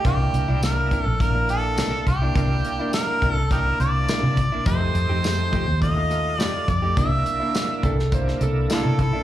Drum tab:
HH |x-x-x-x-x-x-x-x-|x-x-x-x-x-x-x-x-|x-x-x-x-x-x-x-x-|x-x-x-x-x-x-x-x-|
TB |----x-------x---|----x-------x---|----x-------x---|----x-------x---|
SD |----o-------o---|----o-------o---|----o-------o---|----o--o-o--o---|
BD |o-----o-o-----o-|o-----o-o-----o-|o-----o-o-----o-|o-----o-o-----o-|